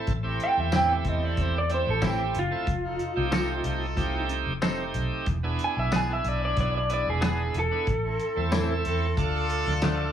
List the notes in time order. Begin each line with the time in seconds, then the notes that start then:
Already playing: A3 C4 E4 A4
0.07 A1 E4 A4, kick, closed hi-hat
0.23 A3 C4 E4 G4 A4
0.40 G5, closed hi-hat
0.57 E2 E5
0.72 A2 E3 C4 E4 G5, snare, closed hi-hat, tambourine
0.88 A3 C4 E4 G4
0.94 E5
1.04 E2 C4 E4 A4, kick, closed hi-hat
1.08 D#5
1.25 D5
1.37 E2, kick, closed hi-hat
1.41 C5
1.58 D5
1.69 A3 C4 E4 G4, closed hi-hat
1.74 C5
1.87 A1 A4
2.02 A2 E3 C4 E4, kick, snare, closed hi-hat, tambourine
2.06 G4
2.35 F#1, closed hi-hat
2.39 F4
2.51 A3 C4 E4 A4
2.67 F1 F4 A4, kick, closed hi-hat
2.83 D#4 F4 A4
2.99 closed hi-hat
3.16 C2 A3 C4 D#4 G4
3.32 F3 C4 D#4 A4, snare, closed hi-hat, tambourine
3.64 C2 D#4 F4 A4, closed hi-hat
3.97 C2 A3 C4 D#4 G4, kick, closed hi-hat
4.29 closed hi-hat
4.46 F1
4.62 F3 A3 C4 D#4 G4 A4, snare, closed hi-hat, tambourine
4.94 B1, closed hi-hat
5.26 E1 E4 G#4, kick, closed hi-hat
5.43 B3 D4 E4 G#4
5.59 closed hi-hat
5.64 G#5
5.76 B1 E5
5.92 E3 B3 D4 G#4, snare, closed hi-hat, tambourine
5.96 G#5
6.09 B3 D4 E4 G#4
6.13 E5
6.24 B1 D4 E4 G#4, closed hi-hat
6.28 D5
6.45 D5
6.57 B1 D5, kick, closed hi-hat
6.77 D5
6.89 B3 D4 E4 G#4, closed hi-hat
6.94 D5
7.06 E1 G#4
7.21 E3 B3 D4 G#4, snare, closed hi-hat, tambourine
7.26 G#4
7.54 E1, closed hi-hat
7.59 A4
7.71 B3 D4 E4 G#4
7.87 A1 E4 A4, kick, closed hi-hat
8.04 C4 E4 A4
8.20 closed hi-hat
8.36 E2 A3 C4 E4 A4
8.52 A2 E3 C4 E4, snare, closed hi-hat, tambourine
8.85 E2 C4 E4 A4, closed hi-hat
9.16 D2 A3 D4 F4 A4, kick, closed hi-hat
9.50 closed hi-hat
9.67 D2, snare
9.82 D3 F3 A3 D4 F4 A4, snare, closed hi-hat, tambourine